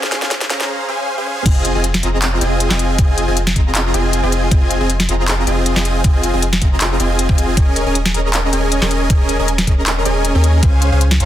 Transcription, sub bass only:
0, 0, Header, 1, 2, 480
1, 0, Start_track
1, 0, Key_signature, -4, "minor"
1, 0, Tempo, 382166
1, 1830, Time_signature, 4, 2, 24, 8
1, 14132, End_track
2, 0, Start_track
2, 0, Title_t, "Sub bass"
2, 0, Program_c, 0, 38
2, 0, Note_on_c, 0, 37, 99
2, 254, Note_off_c, 0, 37, 0
2, 282, Note_on_c, 0, 37, 98
2, 610, Note_off_c, 0, 37, 0
2, 634, Note_on_c, 0, 37, 94
2, 872, Note_off_c, 0, 37, 0
2, 1830, Note_on_c, 0, 29, 95
2, 2173, Note_off_c, 0, 29, 0
2, 2201, Note_on_c, 0, 29, 92
2, 2529, Note_off_c, 0, 29, 0
2, 2552, Note_on_c, 0, 29, 97
2, 3008, Note_off_c, 0, 29, 0
2, 3031, Note_on_c, 0, 29, 99
2, 3373, Note_off_c, 0, 29, 0
2, 3398, Note_on_c, 0, 29, 97
2, 3728, Note_off_c, 0, 29, 0
2, 3749, Note_on_c, 0, 29, 100
2, 4092, Note_off_c, 0, 29, 0
2, 4118, Note_on_c, 0, 29, 96
2, 4447, Note_off_c, 0, 29, 0
2, 4469, Note_on_c, 0, 29, 96
2, 4927, Note_off_c, 0, 29, 0
2, 4951, Note_on_c, 0, 29, 100
2, 5293, Note_off_c, 0, 29, 0
2, 5319, Note_on_c, 0, 29, 100
2, 5648, Note_off_c, 0, 29, 0
2, 5669, Note_on_c, 0, 29, 97
2, 6012, Note_off_c, 0, 29, 0
2, 6037, Note_on_c, 0, 29, 94
2, 6367, Note_off_c, 0, 29, 0
2, 6390, Note_on_c, 0, 29, 100
2, 6848, Note_off_c, 0, 29, 0
2, 6870, Note_on_c, 0, 29, 98
2, 7212, Note_off_c, 0, 29, 0
2, 7238, Note_on_c, 0, 29, 99
2, 7567, Note_off_c, 0, 29, 0
2, 7590, Note_on_c, 0, 29, 98
2, 7932, Note_off_c, 0, 29, 0
2, 7959, Note_on_c, 0, 29, 98
2, 8288, Note_off_c, 0, 29, 0
2, 8310, Note_on_c, 0, 29, 96
2, 8767, Note_off_c, 0, 29, 0
2, 8790, Note_on_c, 0, 29, 100
2, 9133, Note_off_c, 0, 29, 0
2, 9158, Note_on_c, 0, 29, 96
2, 9488, Note_off_c, 0, 29, 0
2, 9509, Note_on_c, 0, 27, 97
2, 9852, Note_off_c, 0, 27, 0
2, 9876, Note_on_c, 0, 27, 93
2, 10207, Note_off_c, 0, 27, 0
2, 10227, Note_on_c, 0, 27, 93
2, 10686, Note_off_c, 0, 27, 0
2, 10707, Note_on_c, 0, 27, 102
2, 11051, Note_off_c, 0, 27, 0
2, 11074, Note_on_c, 0, 27, 102
2, 11406, Note_off_c, 0, 27, 0
2, 11428, Note_on_c, 0, 27, 94
2, 11772, Note_off_c, 0, 27, 0
2, 11796, Note_on_c, 0, 27, 97
2, 12126, Note_off_c, 0, 27, 0
2, 12148, Note_on_c, 0, 27, 98
2, 12607, Note_off_c, 0, 27, 0
2, 12630, Note_on_c, 0, 27, 96
2, 12972, Note_off_c, 0, 27, 0
2, 13000, Note_on_c, 0, 39, 99
2, 13329, Note_off_c, 0, 39, 0
2, 13350, Note_on_c, 0, 37, 99
2, 13692, Note_off_c, 0, 37, 0
2, 13720, Note_on_c, 0, 37, 97
2, 14048, Note_off_c, 0, 37, 0
2, 14070, Note_on_c, 0, 37, 96
2, 14132, Note_off_c, 0, 37, 0
2, 14132, End_track
0, 0, End_of_file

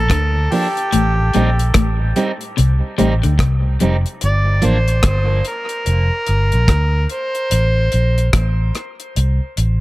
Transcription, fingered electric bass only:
0, 0, Header, 1, 2, 480
1, 0, Start_track
1, 0, Key_signature, -2, "minor"
1, 0, Tempo, 822707
1, 539, Time_signature, 4, 2, 24, 8
1, 5721, End_track
2, 0, Start_track
2, 0, Title_t, "Fingered electric bass"
2, 0, Program_c, 0, 33
2, 60, Note_on_c, 0, 38, 89
2, 274, Note_off_c, 0, 38, 0
2, 549, Note_on_c, 0, 33, 100
2, 759, Note_off_c, 0, 33, 0
2, 790, Note_on_c, 0, 34, 86
2, 999, Note_off_c, 0, 34, 0
2, 1024, Note_on_c, 0, 33, 83
2, 1236, Note_off_c, 0, 33, 0
2, 1511, Note_on_c, 0, 36, 87
2, 1636, Note_off_c, 0, 36, 0
2, 1749, Note_on_c, 0, 33, 85
2, 1875, Note_off_c, 0, 33, 0
2, 1898, Note_on_c, 0, 38, 91
2, 1976, Note_off_c, 0, 38, 0
2, 1983, Note_on_c, 0, 36, 83
2, 2195, Note_off_c, 0, 36, 0
2, 2230, Note_on_c, 0, 29, 82
2, 2356, Note_off_c, 0, 29, 0
2, 2471, Note_on_c, 0, 31, 89
2, 2680, Note_off_c, 0, 31, 0
2, 2710, Note_on_c, 0, 33, 80
2, 2919, Note_off_c, 0, 33, 0
2, 2943, Note_on_c, 0, 31, 93
2, 3156, Note_off_c, 0, 31, 0
2, 3426, Note_on_c, 0, 29, 87
2, 3553, Note_off_c, 0, 29, 0
2, 3669, Note_on_c, 0, 31, 72
2, 3795, Note_off_c, 0, 31, 0
2, 3814, Note_on_c, 0, 34, 92
2, 3894, Note_off_c, 0, 34, 0
2, 3903, Note_on_c, 0, 38, 86
2, 4116, Note_off_c, 0, 38, 0
2, 4388, Note_on_c, 0, 33, 96
2, 4598, Note_off_c, 0, 33, 0
2, 4633, Note_on_c, 0, 34, 88
2, 4841, Note_off_c, 0, 34, 0
2, 4868, Note_on_c, 0, 33, 95
2, 5078, Note_off_c, 0, 33, 0
2, 5351, Note_on_c, 0, 36, 94
2, 5476, Note_off_c, 0, 36, 0
2, 5589, Note_on_c, 0, 33, 77
2, 5715, Note_off_c, 0, 33, 0
2, 5721, End_track
0, 0, End_of_file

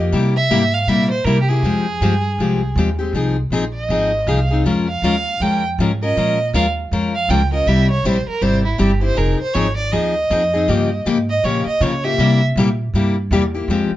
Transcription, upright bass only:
0, 0, Header, 1, 3, 480
1, 0, Start_track
1, 0, Key_signature, -4, "minor"
1, 0, Tempo, 376412
1, 173, Time_signature, 4, 2, 24, 8
1, 17812, End_track
2, 0, Start_track
2, 0, Title_t, "Upright bass"
2, 0, Program_c, 0, 32
2, 0, Note_on_c, 0, 41, 91
2, 147, Note_off_c, 0, 41, 0
2, 155, Note_on_c, 0, 48, 78
2, 629, Note_off_c, 0, 48, 0
2, 638, Note_on_c, 0, 44, 76
2, 1104, Note_off_c, 0, 44, 0
2, 1111, Note_on_c, 0, 46, 69
2, 1583, Note_off_c, 0, 46, 0
2, 1591, Note_on_c, 0, 48, 89
2, 2066, Note_off_c, 0, 48, 0
2, 2074, Note_on_c, 0, 41, 83
2, 2548, Note_off_c, 0, 41, 0
2, 2562, Note_on_c, 0, 43, 78
2, 3032, Note_off_c, 0, 43, 0
2, 3040, Note_on_c, 0, 36, 70
2, 3506, Note_off_c, 0, 36, 0
2, 3514, Note_on_c, 0, 39, 86
2, 3982, Note_off_c, 0, 39, 0
2, 3989, Note_on_c, 0, 36, 79
2, 4458, Note_off_c, 0, 36, 0
2, 4466, Note_on_c, 0, 34, 68
2, 4945, Note_off_c, 0, 34, 0
2, 4955, Note_on_c, 0, 32, 74
2, 5430, Note_off_c, 0, 32, 0
2, 5441, Note_on_c, 0, 36, 87
2, 5908, Note_off_c, 0, 36, 0
2, 5916, Note_on_c, 0, 41, 78
2, 6391, Note_off_c, 0, 41, 0
2, 6400, Note_on_c, 0, 39, 82
2, 6873, Note_off_c, 0, 39, 0
2, 6888, Note_on_c, 0, 41, 75
2, 7357, Note_off_c, 0, 41, 0
2, 7377, Note_on_c, 0, 44, 96
2, 7842, Note_off_c, 0, 44, 0
2, 7862, Note_on_c, 0, 46, 78
2, 8325, Note_off_c, 0, 46, 0
2, 8333, Note_on_c, 0, 39, 82
2, 8801, Note_off_c, 0, 39, 0
2, 8817, Note_on_c, 0, 41, 76
2, 9283, Note_off_c, 0, 41, 0
2, 9290, Note_on_c, 0, 37, 90
2, 9760, Note_off_c, 0, 37, 0
2, 9774, Note_on_c, 0, 36, 81
2, 10242, Note_off_c, 0, 36, 0
2, 10248, Note_on_c, 0, 34, 75
2, 10525, Note_off_c, 0, 34, 0
2, 10729, Note_on_c, 0, 32, 67
2, 11200, Note_off_c, 0, 32, 0
2, 11215, Note_on_c, 0, 31, 86
2, 11683, Note_off_c, 0, 31, 0
2, 11689, Note_on_c, 0, 29, 78
2, 11966, Note_off_c, 0, 29, 0
2, 12180, Note_on_c, 0, 32, 79
2, 12646, Note_off_c, 0, 32, 0
2, 12663, Note_on_c, 0, 39, 70
2, 13128, Note_off_c, 0, 39, 0
2, 13138, Note_on_c, 0, 41, 93
2, 13605, Note_off_c, 0, 41, 0
2, 13624, Note_on_c, 0, 43, 82
2, 14089, Note_off_c, 0, 43, 0
2, 14097, Note_on_c, 0, 44, 74
2, 14565, Note_off_c, 0, 44, 0
2, 14582, Note_on_c, 0, 46, 78
2, 14853, Note_off_c, 0, 46, 0
2, 15055, Note_on_c, 0, 49, 99
2, 15523, Note_off_c, 0, 49, 0
2, 15528, Note_on_c, 0, 48, 84
2, 15999, Note_off_c, 0, 48, 0
2, 16012, Note_on_c, 0, 46, 88
2, 16481, Note_off_c, 0, 46, 0
2, 16495, Note_on_c, 0, 43, 77
2, 16962, Note_off_c, 0, 43, 0
2, 16968, Note_on_c, 0, 40, 95
2, 17438, Note_off_c, 0, 40, 0
2, 17444, Note_on_c, 0, 41, 87
2, 17721, Note_off_c, 0, 41, 0
2, 17812, End_track
3, 0, Start_track
3, 0, Title_t, "Muted upright bass strokes"
3, 10548, Note_on_c, 9, 29, 38
3, 10676, Note_off_c, 9, 29, 0
3, 14871, Note_on_c, 9, 29, 38
3, 14998, Note_off_c, 9, 29, 0
3, 17735, Note_on_c, 9, 29, 38
3, 17812, Note_off_c, 9, 29, 0
3, 17812, End_track
0, 0, End_of_file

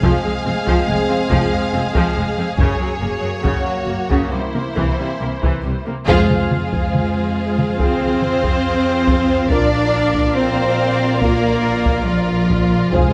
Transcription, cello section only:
0, 0, Header, 1, 2, 480
1, 0, Start_track
1, 0, Tempo, 853485
1, 1452, Time_signature, 4, 2, 24, 8
1, 1935, Tempo, 873362
1, 3855, Tempo, 855920
1, 7331, End_track
2, 0, Start_track
2, 0, Title_t, "Cello section"
2, 0, Program_c, 0, 48
2, 16, Note_on_c, 0, 41, 77
2, 61, Note_off_c, 0, 41, 0
2, 132, Note_on_c, 0, 41, 51
2, 177, Note_off_c, 0, 41, 0
2, 259, Note_on_c, 0, 41, 48
2, 304, Note_off_c, 0, 41, 0
2, 377, Note_on_c, 0, 41, 72
2, 422, Note_off_c, 0, 41, 0
2, 499, Note_on_c, 0, 41, 47
2, 544, Note_off_c, 0, 41, 0
2, 619, Note_on_c, 0, 41, 47
2, 664, Note_off_c, 0, 41, 0
2, 736, Note_on_c, 0, 41, 69
2, 781, Note_off_c, 0, 41, 0
2, 855, Note_on_c, 0, 41, 47
2, 900, Note_off_c, 0, 41, 0
2, 974, Note_on_c, 0, 41, 51
2, 1019, Note_off_c, 0, 41, 0
2, 1090, Note_on_c, 0, 41, 66
2, 1135, Note_off_c, 0, 41, 0
2, 1212, Note_on_c, 0, 41, 47
2, 1257, Note_off_c, 0, 41, 0
2, 1329, Note_on_c, 0, 41, 50
2, 1373, Note_off_c, 0, 41, 0
2, 1451, Note_on_c, 0, 42, 71
2, 1496, Note_off_c, 0, 42, 0
2, 1571, Note_on_c, 0, 42, 46
2, 1616, Note_off_c, 0, 42, 0
2, 1688, Note_on_c, 0, 42, 48
2, 1733, Note_off_c, 0, 42, 0
2, 1810, Note_on_c, 0, 42, 45
2, 1855, Note_off_c, 0, 42, 0
2, 1936, Note_on_c, 0, 42, 66
2, 1980, Note_off_c, 0, 42, 0
2, 2057, Note_on_c, 0, 42, 43
2, 2101, Note_off_c, 0, 42, 0
2, 2174, Note_on_c, 0, 42, 43
2, 2218, Note_off_c, 0, 42, 0
2, 2294, Note_on_c, 0, 42, 66
2, 2338, Note_off_c, 0, 42, 0
2, 2417, Note_on_c, 0, 48, 42
2, 2461, Note_off_c, 0, 48, 0
2, 2541, Note_on_c, 0, 48, 43
2, 2585, Note_off_c, 0, 48, 0
2, 2664, Note_on_c, 0, 48, 57
2, 2708, Note_off_c, 0, 48, 0
2, 2788, Note_on_c, 0, 48, 43
2, 2832, Note_off_c, 0, 48, 0
2, 2908, Note_on_c, 0, 48, 46
2, 2952, Note_off_c, 0, 48, 0
2, 3028, Note_on_c, 0, 48, 59
2, 3072, Note_off_c, 0, 48, 0
2, 3144, Note_on_c, 0, 48, 43
2, 3188, Note_off_c, 0, 48, 0
2, 3269, Note_on_c, 0, 48, 44
2, 3313, Note_off_c, 0, 48, 0
2, 3383, Note_on_c, 0, 56, 92
2, 4314, Note_off_c, 0, 56, 0
2, 4338, Note_on_c, 0, 60, 80
2, 5278, Note_off_c, 0, 60, 0
2, 5296, Note_on_c, 0, 62, 89
2, 5767, Note_off_c, 0, 62, 0
2, 5775, Note_on_c, 0, 60, 84
2, 6254, Note_on_c, 0, 58, 76
2, 6255, Note_off_c, 0, 60, 0
2, 6732, Note_on_c, 0, 53, 75
2, 6734, Note_off_c, 0, 58, 0
2, 7213, Note_off_c, 0, 53, 0
2, 7214, Note_on_c, 0, 56, 91
2, 7331, Note_off_c, 0, 56, 0
2, 7331, End_track
0, 0, End_of_file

